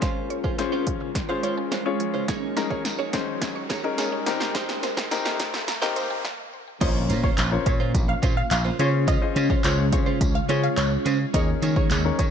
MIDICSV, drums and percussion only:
0, 0, Header, 1, 2, 480
1, 0, Start_track
1, 0, Tempo, 566038
1, 17, Time_signature, 4, 2, 24, 8
1, 10435, End_track
2, 0, Start_track
2, 0, Title_t, "Drums"
2, 16, Note_on_c, 9, 38, 64
2, 17, Note_on_c, 9, 36, 118
2, 17, Note_on_c, 9, 42, 89
2, 101, Note_off_c, 9, 38, 0
2, 101, Note_off_c, 9, 42, 0
2, 102, Note_off_c, 9, 36, 0
2, 257, Note_on_c, 9, 42, 67
2, 342, Note_off_c, 9, 42, 0
2, 375, Note_on_c, 9, 36, 90
2, 460, Note_off_c, 9, 36, 0
2, 496, Note_on_c, 9, 38, 73
2, 497, Note_on_c, 9, 42, 75
2, 581, Note_off_c, 9, 38, 0
2, 581, Note_off_c, 9, 42, 0
2, 735, Note_on_c, 9, 42, 85
2, 737, Note_on_c, 9, 36, 87
2, 820, Note_off_c, 9, 42, 0
2, 822, Note_off_c, 9, 36, 0
2, 977, Note_on_c, 9, 36, 93
2, 977, Note_on_c, 9, 38, 76
2, 977, Note_on_c, 9, 42, 98
2, 1061, Note_off_c, 9, 36, 0
2, 1061, Note_off_c, 9, 38, 0
2, 1062, Note_off_c, 9, 42, 0
2, 1216, Note_on_c, 9, 42, 75
2, 1301, Note_off_c, 9, 42, 0
2, 1456, Note_on_c, 9, 38, 81
2, 1456, Note_on_c, 9, 42, 83
2, 1541, Note_off_c, 9, 38, 0
2, 1541, Note_off_c, 9, 42, 0
2, 1696, Note_on_c, 9, 42, 75
2, 1781, Note_off_c, 9, 42, 0
2, 1936, Note_on_c, 9, 38, 84
2, 1936, Note_on_c, 9, 42, 89
2, 1936, Note_on_c, 9, 54, 33
2, 1937, Note_on_c, 9, 36, 120
2, 2021, Note_off_c, 9, 38, 0
2, 2021, Note_off_c, 9, 42, 0
2, 2021, Note_off_c, 9, 54, 0
2, 2022, Note_off_c, 9, 36, 0
2, 2176, Note_on_c, 9, 38, 90
2, 2177, Note_on_c, 9, 42, 70
2, 2177, Note_on_c, 9, 54, 49
2, 2261, Note_off_c, 9, 38, 0
2, 2262, Note_off_c, 9, 42, 0
2, 2262, Note_off_c, 9, 54, 0
2, 2295, Note_on_c, 9, 36, 95
2, 2380, Note_off_c, 9, 36, 0
2, 2416, Note_on_c, 9, 38, 88
2, 2416, Note_on_c, 9, 54, 91
2, 2417, Note_on_c, 9, 42, 76
2, 2501, Note_off_c, 9, 38, 0
2, 2501, Note_off_c, 9, 42, 0
2, 2501, Note_off_c, 9, 54, 0
2, 2655, Note_on_c, 9, 42, 82
2, 2656, Note_on_c, 9, 38, 97
2, 2656, Note_on_c, 9, 54, 32
2, 2657, Note_on_c, 9, 36, 97
2, 2740, Note_off_c, 9, 42, 0
2, 2741, Note_off_c, 9, 38, 0
2, 2741, Note_off_c, 9, 54, 0
2, 2742, Note_off_c, 9, 36, 0
2, 2896, Note_on_c, 9, 38, 93
2, 2896, Note_on_c, 9, 54, 50
2, 2897, Note_on_c, 9, 36, 101
2, 2897, Note_on_c, 9, 42, 98
2, 2980, Note_off_c, 9, 54, 0
2, 2981, Note_off_c, 9, 36, 0
2, 2981, Note_off_c, 9, 38, 0
2, 2982, Note_off_c, 9, 42, 0
2, 3136, Note_on_c, 9, 36, 102
2, 3136, Note_on_c, 9, 38, 96
2, 3136, Note_on_c, 9, 42, 79
2, 3136, Note_on_c, 9, 54, 50
2, 3220, Note_off_c, 9, 54, 0
2, 3221, Note_off_c, 9, 36, 0
2, 3221, Note_off_c, 9, 38, 0
2, 3221, Note_off_c, 9, 42, 0
2, 3376, Note_on_c, 9, 38, 98
2, 3376, Note_on_c, 9, 42, 84
2, 3376, Note_on_c, 9, 54, 85
2, 3461, Note_off_c, 9, 38, 0
2, 3461, Note_off_c, 9, 42, 0
2, 3461, Note_off_c, 9, 54, 0
2, 3616, Note_on_c, 9, 38, 100
2, 3616, Note_on_c, 9, 42, 79
2, 3616, Note_on_c, 9, 54, 52
2, 3701, Note_off_c, 9, 38, 0
2, 3701, Note_off_c, 9, 42, 0
2, 3701, Note_off_c, 9, 54, 0
2, 3737, Note_on_c, 9, 38, 97
2, 3821, Note_off_c, 9, 38, 0
2, 3856, Note_on_c, 9, 38, 101
2, 3856, Note_on_c, 9, 42, 91
2, 3857, Note_on_c, 9, 36, 122
2, 3857, Note_on_c, 9, 54, 34
2, 3941, Note_off_c, 9, 38, 0
2, 3941, Note_off_c, 9, 42, 0
2, 3942, Note_off_c, 9, 36, 0
2, 3942, Note_off_c, 9, 54, 0
2, 3976, Note_on_c, 9, 38, 104
2, 4061, Note_off_c, 9, 38, 0
2, 4096, Note_on_c, 9, 38, 104
2, 4097, Note_on_c, 9, 42, 70
2, 4097, Note_on_c, 9, 54, 53
2, 4181, Note_off_c, 9, 38, 0
2, 4181, Note_off_c, 9, 54, 0
2, 4182, Note_off_c, 9, 42, 0
2, 4215, Note_on_c, 9, 36, 92
2, 4216, Note_on_c, 9, 38, 105
2, 4300, Note_off_c, 9, 36, 0
2, 4301, Note_off_c, 9, 38, 0
2, 4336, Note_on_c, 9, 38, 104
2, 4336, Note_on_c, 9, 54, 96
2, 4337, Note_on_c, 9, 42, 77
2, 4421, Note_off_c, 9, 38, 0
2, 4421, Note_off_c, 9, 42, 0
2, 4421, Note_off_c, 9, 54, 0
2, 4456, Note_on_c, 9, 38, 115
2, 4541, Note_off_c, 9, 38, 0
2, 4575, Note_on_c, 9, 42, 85
2, 4576, Note_on_c, 9, 38, 115
2, 4577, Note_on_c, 9, 36, 97
2, 4660, Note_off_c, 9, 42, 0
2, 4661, Note_off_c, 9, 38, 0
2, 4662, Note_off_c, 9, 36, 0
2, 4696, Note_on_c, 9, 38, 107
2, 4781, Note_off_c, 9, 38, 0
2, 4816, Note_on_c, 9, 38, 110
2, 4816, Note_on_c, 9, 54, 51
2, 4817, Note_on_c, 9, 42, 103
2, 4901, Note_off_c, 9, 38, 0
2, 4901, Note_off_c, 9, 54, 0
2, 4902, Note_off_c, 9, 42, 0
2, 4937, Note_on_c, 9, 38, 118
2, 5022, Note_off_c, 9, 38, 0
2, 5056, Note_on_c, 9, 42, 77
2, 5056, Note_on_c, 9, 54, 51
2, 5141, Note_off_c, 9, 42, 0
2, 5141, Note_off_c, 9, 54, 0
2, 5297, Note_on_c, 9, 36, 109
2, 5297, Note_on_c, 9, 38, 92
2, 5381, Note_off_c, 9, 36, 0
2, 5382, Note_off_c, 9, 38, 0
2, 5777, Note_on_c, 9, 36, 117
2, 5777, Note_on_c, 9, 42, 94
2, 5777, Note_on_c, 9, 49, 100
2, 5777, Note_on_c, 9, 54, 36
2, 5862, Note_off_c, 9, 36, 0
2, 5862, Note_off_c, 9, 42, 0
2, 5862, Note_off_c, 9, 49, 0
2, 5862, Note_off_c, 9, 54, 0
2, 6017, Note_on_c, 9, 54, 53
2, 6018, Note_on_c, 9, 42, 72
2, 6102, Note_off_c, 9, 54, 0
2, 6103, Note_off_c, 9, 42, 0
2, 6135, Note_on_c, 9, 36, 94
2, 6220, Note_off_c, 9, 36, 0
2, 6257, Note_on_c, 9, 54, 94
2, 6258, Note_on_c, 9, 39, 111
2, 6258, Note_on_c, 9, 42, 77
2, 6341, Note_off_c, 9, 54, 0
2, 6343, Note_off_c, 9, 39, 0
2, 6343, Note_off_c, 9, 42, 0
2, 6496, Note_on_c, 9, 42, 85
2, 6497, Note_on_c, 9, 54, 33
2, 6498, Note_on_c, 9, 36, 100
2, 6581, Note_off_c, 9, 42, 0
2, 6582, Note_off_c, 9, 54, 0
2, 6583, Note_off_c, 9, 36, 0
2, 6736, Note_on_c, 9, 54, 49
2, 6738, Note_on_c, 9, 36, 102
2, 6739, Note_on_c, 9, 42, 106
2, 6821, Note_off_c, 9, 54, 0
2, 6822, Note_off_c, 9, 36, 0
2, 6824, Note_off_c, 9, 42, 0
2, 6977, Note_on_c, 9, 36, 106
2, 6977, Note_on_c, 9, 42, 78
2, 6977, Note_on_c, 9, 54, 53
2, 7062, Note_off_c, 9, 36, 0
2, 7062, Note_off_c, 9, 42, 0
2, 7062, Note_off_c, 9, 54, 0
2, 7217, Note_on_c, 9, 39, 124
2, 7217, Note_on_c, 9, 54, 91
2, 7218, Note_on_c, 9, 42, 93
2, 7302, Note_off_c, 9, 39, 0
2, 7302, Note_off_c, 9, 42, 0
2, 7302, Note_off_c, 9, 54, 0
2, 7457, Note_on_c, 9, 42, 77
2, 7457, Note_on_c, 9, 54, 54
2, 7542, Note_off_c, 9, 42, 0
2, 7542, Note_off_c, 9, 54, 0
2, 7697, Note_on_c, 9, 54, 37
2, 7698, Note_on_c, 9, 36, 122
2, 7698, Note_on_c, 9, 42, 92
2, 7782, Note_off_c, 9, 42, 0
2, 7782, Note_off_c, 9, 54, 0
2, 7783, Note_off_c, 9, 36, 0
2, 7938, Note_on_c, 9, 42, 70
2, 7938, Note_on_c, 9, 54, 54
2, 8023, Note_off_c, 9, 42, 0
2, 8023, Note_off_c, 9, 54, 0
2, 8055, Note_on_c, 9, 36, 98
2, 8140, Note_off_c, 9, 36, 0
2, 8177, Note_on_c, 9, 39, 115
2, 8177, Note_on_c, 9, 42, 81
2, 8177, Note_on_c, 9, 54, 97
2, 8262, Note_off_c, 9, 39, 0
2, 8262, Note_off_c, 9, 42, 0
2, 8262, Note_off_c, 9, 54, 0
2, 8416, Note_on_c, 9, 42, 88
2, 8418, Note_on_c, 9, 36, 100
2, 8418, Note_on_c, 9, 54, 35
2, 8501, Note_off_c, 9, 42, 0
2, 8502, Note_off_c, 9, 54, 0
2, 8503, Note_off_c, 9, 36, 0
2, 8657, Note_on_c, 9, 36, 100
2, 8657, Note_on_c, 9, 54, 49
2, 8658, Note_on_c, 9, 42, 106
2, 8741, Note_off_c, 9, 54, 0
2, 8742, Note_off_c, 9, 36, 0
2, 8743, Note_off_c, 9, 42, 0
2, 8896, Note_on_c, 9, 54, 53
2, 8897, Note_on_c, 9, 42, 78
2, 8981, Note_off_c, 9, 54, 0
2, 8982, Note_off_c, 9, 42, 0
2, 9136, Note_on_c, 9, 54, 87
2, 9137, Note_on_c, 9, 39, 124
2, 9137, Note_on_c, 9, 42, 93
2, 9221, Note_off_c, 9, 39, 0
2, 9221, Note_off_c, 9, 54, 0
2, 9222, Note_off_c, 9, 42, 0
2, 9377, Note_on_c, 9, 42, 80
2, 9377, Note_on_c, 9, 54, 53
2, 9461, Note_off_c, 9, 54, 0
2, 9462, Note_off_c, 9, 42, 0
2, 9616, Note_on_c, 9, 54, 35
2, 9617, Note_on_c, 9, 36, 120
2, 9617, Note_on_c, 9, 42, 97
2, 9701, Note_off_c, 9, 54, 0
2, 9702, Note_off_c, 9, 36, 0
2, 9702, Note_off_c, 9, 42, 0
2, 9857, Note_on_c, 9, 54, 53
2, 9858, Note_on_c, 9, 42, 69
2, 9941, Note_off_c, 9, 54, 0
2, 9942, Note_off_c, 9, 42, 0
2, 9975, Note_on_c, 9, 36, 102
2, 10060, Note_off_c, 9, 36, 0
2, 10096, Note_on_c, 9, 54, 93
2, 10097, Note_on_c, 9, 39, 112
2, 10097, Note_on_c, 9, 42, 79
2, 10180, Note_off_c, 9, 54, 0
2, 10182, Note_off_c, 9, 39, 0
2, 10182, Note_off_c, 9, 42, 0
2, 10336, Note_on_c, 9, 42, 90
2, 10336, Note_on_c, 9, 54, 35
2, 10337, Note_on_c, 9, 36, 96
2, 10420, Note_off_c, 9, 42, 0
2, 10421, Note_off_c, 9, 54, 0
2, 10422, Note_off_c, 9, 36, 0
2, 10435, End_track
0, 0, End_of_file